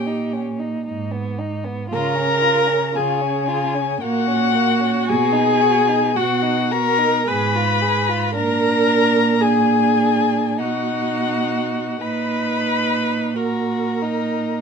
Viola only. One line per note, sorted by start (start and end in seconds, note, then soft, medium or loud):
0.00 0.36 G4 medium
1.93 2.98 A#4 loud
2.97 4.02 G#4 medium
4.03 5.10 F#4 loud
5.09 6.18 G#4 loud
6.16 6.73 F#4 medium
6.71 7.29 A#4 loud
7.27 8.34 B4 loud
8.34 9.43 A#4 loud
9.41 10.61 G#4 loud
10.59 12.01 F#4 medium
12.01 13.38 B4 loud
13.37 14.61 A#4 medium